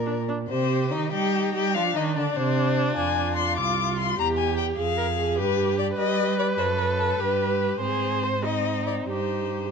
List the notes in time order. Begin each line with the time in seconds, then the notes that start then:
Already playing: A#2 A#4 D5
0.06 D4
0.29 D4
0.49 C3 C4 G4 C5
0.92 D#3 D#4 D#5
1.12 G3 D#4 G4 G5
1.54 G3 G4 G5
1.74 F3 D4 F4 F5
1.95 D#3 D#4 D#5
2.16 D3 D4 D5
2.36 C3 C4 C5
2.96 F2 F4 G#5
3.36 C6
3.58 C2 F4 D6
3.99 C6
4.18 E2 G4 A#5
4.38 G#5
4.57 G5
4.78 F2 G#4 F5
4.97 A#4
5.18 G#4
5.37 G2 G4 B4
5.79 D5
5.97 G3 G4 B4 D#5
6.39 D5
6.58 F#2 A4 C5
6.78 B4
6.99 A4
7.19 G2 G4 B4
7.81 G#2 C4 G#4 C5
8.23 C5
8.44 C4 D#4 D#5
8.87 D5
9.09 G2 D#4 G4 C5